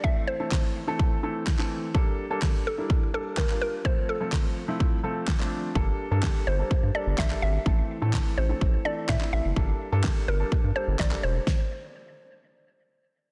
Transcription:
<<
  \new Staff \with { instrumentName = "Synth pluck" } { \time 4/4 \key g \dorian \tempo 4 = 126 e''8 c''2. r8 | r4. a'4 a'8 bes'8 bes'8 | c''8 a'2. r8 | r4. c''4 d''8 e''8 e''8 |
r4. c''4 d''8 e''8 e''8 | r4. bes'4 c''8 d''8 c''8~ | c''2.~ c''8 r8 | }
  \new Staff \with { instrumentName = "Grand piano" } { \time 4/4 \key g \dorian <e a c' a'>8 r16 <e a c' a'>8. r16 <e a c' a'>8 r16 <e a c' a'>8 r16 <e a c' a'>8 r16 | <g bes d' a'>8 r16 <g bes d' a'>8. r16 <g bes d' e'>8 r16 <g bes d' a'>8 r16 <g bes d' f'>8 r16 | <f a c' a'>8 r16 <f a c' a'>8. r16 <f a c' e'>8 r16 <f a c' a'>8 r16 <f a c' d'>8 r16 | <g bes d' a'>8 r16 <g bes d' a'>8. r16 <g bes d' a'>8 r16 <g bes d' a'>8 r16 <g bes d' a'>8 r16 |
<e a c' a'>8 r16 <e a c' a'>8. r16 <e a c' a'>8 r16 <e a c' a'>8 r16 <e a c' e'>8 r16 | <g bes d' a'>8 r16 <g bes d' a'>8. r16 <g bes d' a'>8 r16 <g bes d' a'>8 r16 <g bes d' a'>8 r16 | r1 | }
  \new Staff \with { instrumentName = "Sub bass" } { \clef bass \time 4/4 \key g \dorian r1 | r1 | r1 | g,,8 r16 g,8 r16 g,,8 g,16 g,16 r16 g,,16 bes,,8 aes,,8 |
a,,8 r16 a,8 r16 a,,8 a,,8 r8 a,16 r16 a,,16 fis,,16 | g,,8 r16 g,8 r16 g,,8 g,16 g,16 r16 g,,16 bes,,8 e,,8 | r1 | }
  \new DrumStaff \with { instrumentName = "Drums" } \drummode { \time 4/4 bd4 <hc bd sn>4 bd4 <hc bd sn>16 hc8. | bd4 <hc bd sn>4 bd4 <hc bd sn>16 hc8. | bd4 <hc bd sn>4 bd4 <hc bd sn>16 hc8. | bd4 <hc bd sn>4 bd4 <hc bd sn>16 hc8. |
bd4 <hc bd sn>4 bd4 <hc bd sn>16 hc8. | bd4 <hc bd sn>4 bd4 <hc bd sn>16 hc8. | <bd sn>4 r4 r4 r4 | }
>>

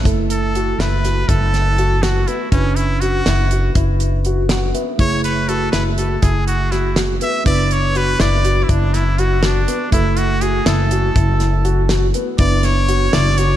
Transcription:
<<
  \new Staff \with { instrumentName = "Trumpet" } { \time 5/8 \key fis \minor \tempo 4 = 122 r8 a'4 b'4 | a'4. fis'8 e'8 | cis'8 e'8 fis'4. | r2 r8 |
cis''8 b'8 a'8 b'8 a'8 | gis'8 fis'8 e'8 r8 e''8 | d''8 cis''8 b'8 d''8.~ d''32 e'32 | d'8 e'8 fis'8 d'4 |
e'8 fis'8 gis'8 a'4~ | a'4. r4 | d''8 cis''4 d''8 cis''8 | }
  \new Staff \with { instrumentName = "Grand piano" } { \time 5/8 \key fis \minor e'4 fis'8 e'8 fis'8 | e'4 fis'8 fis'8 b8 | e'4 fis'8 e'8 fis'8 | e'4 fis'8 fis'8 b8 |
e'4 fis'8 e'8 fis'8 | e'4 fis'8 fis'8 b8 | e'4 fis'8 e'8 fis'8 | e'4 fis'8 fis'8 b8 |
e'4 fis'8 e'8 fis'8 | e'4 fis'8 fis'8 b8 | e'4 fis'8 e'8 fis'8 | }
  \new Staff \with { instrumentName = "Tine electric piano" } { \time 5/8 \key fis \minor << { r2 r8 | r2 r8 | r2 r8 | r4. fis''8 e''8 |
r2 r8 | r2 r8 | r2 r8 | r2 r8 |
r2 r8 | r2 r8 | r2 r8 | } \\ { <a e' a'>2~ <a e' a'>8~ | <a e' a'>2~ <a e' a'>8 | <cis' d' b'>2~ <cis' d' b'>8~ | <cis' d' b'>2~ <cis' d' b'>8 |
<a e' gis'>2~ <a e' gis'>8~ | <a e' gis'>2~ <a e' gis'>8 | <b d' b'>2~ <b d' b'>8~ | <b d' b'>2~ <b d' b'>8 |
<a e' a'>2~ <a e' a'>8~ | <a e' a'>2~ <a e' a'>8 | <b d' b'>2~ <b d' b'>8 | } >> }
  \new Staff \with { instrumentName = "Upright bass" } { \clef bass \time 5/8 \key fis \minor fis,,4. fis,,4 | fis,,2 r8 | fis,,4. fis,,4 | fis,,2 r8 |
fis,,4. fis,,4 | fis,,2 r8 | fis,,4. fis,,4 | fis,,2 r8 |
fis,,4. fis,,4 | fis,,2 r8 | fis,,4. fis,,4 | }
  \new DrumStaff \with { instrumentName = "Drums" } \drummode { \time 5/8 <hh bd>8 hh8 hh8 <hh sn>8 <hh sn>8 | <hh bd>8 <hh sn>8 hh8 <hh sn>8 hh8 | <hh bd>8 hh8 hh8 <hh sn>8 hh8 | <hh bd>8 hh8 hh8 <hh sn>8 hh8 |
<hh bd>8 hh8 hh8 <hh sn>8 hh8 | <hh bd>8 hh8 <hh sn>8 <hh sn>8 hh8 | <hh bd>8 hh8 hh8 <hh sn>8 hh8 | <hh bd>8 <hh sn>8 hh8 <hh sn>8 hh8 |
<hh bd>8 hh8 hh8 <hh sn>8 hh8 | <hh bd>8 <hh sn>8 hh8 <hh sn>8 hh8 | <hh bd>8 <hh sn>8 hh8 <hh sn>8 hh8 | }
>>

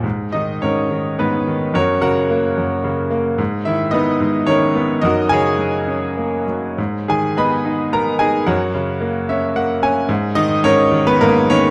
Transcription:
<<
  \new Staff \with { instrumentName = "Grand piano" } { \time 3/4 \key gis \minor \tempo 4 = 109 r8 <dis' dis''>8 <cis' ais' cis''>4 <b dis' b'>4 | <cis' fis' ais' cis''>8 <fis' ais' fis''>2 r8 | r8 <e' e''>8 <dis' b' dis''>4 <cis' ais' cis''>4 | <dis' fis' ais' dis''>8 <gis' cis'' gis''>2 r8 |
r8 <gis' gis''>8 <b' dis'' b''>4 <ais' ais''>8 <gis' gis''>8 | <fis' ais' cis'' fis''>2~ <fis' ais' cis'' fis''>8 r8 | r8 <dis' dis''>8 <cis' ais' cis''>8. <b b'>16 <ais ais'>8 <cis' cis''>8 | }
  \new Staff \with { instrumentName = "Grand piano" } { \clef bass \time 3/4 \key gis \minor gis,8 dis8 gis,8 dis8 gis,8 dis8 | fis,8 cis8 ais8 fis,8 cis8 ais8 | gis,8 dis8 b8 gis,8 dis8 b8 | fis,8 cis8 fis8 cis'8 ais8 fis8 |
gis,8 dis8 b8 dis'8 b8 dis'8 | fis,8 cis8 ais8 <cis' e''>8 <ais fis''>8 <cis' gis''>8 | gis,8 dis8 gis,8 dis8 gis,8 dis8 | }
>>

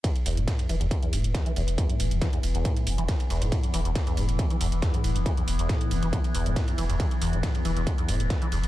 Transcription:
<<
  \new Staff \with { instrumentName = "Synth drone" } { \clef bass \time 4/4 \key c \lydian \tempo 4 = 138 <e b>1~ | <e b>1~ | <e b>1~ | <e b>1~ |
<e b>1 | }
  \new Staff \with { instrumentName = "Acid bass" } { \clef bass \time 4/4 \key c \lydian e,16 r16 e,16 a,8 e,16 e16 e,16 r16 e,16 a,8 e,16 e16 e,16 r16 | e,16 a,8 e,16 e16 e,16 r16 e,16 a,8 e,16 e16 e,16 r16 e,16 a,16~ | a,16 e,16 e16 e,16 r16 e,16 a,8 e,16 e16 e,16 r16 e,16 a,8 e,16 | e16 e,16 r16 e,16 a,8 e,16 e16 e,16 r16 e,16 a,8 e,16 e16 e,16 |
e,16 r16 e,16 a,8 e,16 e16 e,16 r16 e,16 a,8 e,16 e16 e,16 r16 | }
  \new Staff \with { instrumentName = "Sub bass" } { \clef bass \time 4/4 \key c \lydian r8 e,,16 e,,16 r8 e,,16 e,,16 r8 e,,16 e,,16 r8 e,,16 e,,16 | r8 e,,16 e,,16 r8 e,,16 e,,16 r8 e,,16 e,,16 r8 e,,16 e,,16 | r8 e,,16 e,,16 r8 e,,16 e,,16 r8 e,,16 e,,16 r8 e,,16 e,,16 | r8 e,,16 e,,16 r8 e,,16 e,,16 r8 e,,16 e,,16 r8 e,,16 e,,16 |
r8 e,,16 e,,16 r8 e,,16 e,,16 r8 e,,16 e,,16 r8 e,,16 e,,16 | }
  \new DrumStaff \with { instrumentName = "Drums" } \drummode { \time 4/4 <hh bd cymr>16 hh16 <hho cymr sn>16 hh16 <hh bd cymr sn>16 <hh cymr>16 <hho cymr>16 hh16 <hh bd cymr>16 hh16 <hho cymr>16 hh16 <hh bd cymr sn>16 hh16 <hho cymr>16 hh16 | <hh bd cymr>16 hh16 <hho cymr>16 hh16 <hh bd cymr sn>16 hh16 <hho cymr>16 hh16 <hh bd cymr>16 <hh cymr>16 <hho cymr>16 hh16 <hh bd cymr sn>16 <hh cymr>16 <hho cymr sn>16 <hh cymr>16 | <hh bd cymr>16 hh16 <hho cymr sn>16 hh16 <hh bd cymr sn>16 <hh cymr>16 <hho cymr>16 hh16 <hh bd cymr>16 hh16 <hho cymr>16 hh16 <hh bd cymr sn>16 hh16 <hho cymr>16 hh16 | <hh bd cymr>16 hh16 <hho cymr>16 hh16 <hh bd cymr sn>16 hh16 <hho cymr>16 hh16 <hh bd cymr>16 <hh cymr>16 <hho cymr>16 hh16 <hh bd cymr sn>16 <hh cymr>16 <hho cymr sn>16 <hh cymr>16 |
<hh bd cymr>16 hh16 <hho cymr sn>16 hh16 <hh bd cymr sn>16 <hh cymr>16 <hho cymr>16 hh16 <hh bd cymr>16 hh16 <hho cymr>16 hh16 <hh bd cymr sn>16 hh16 <hho cymr>16 hh16 | }
>>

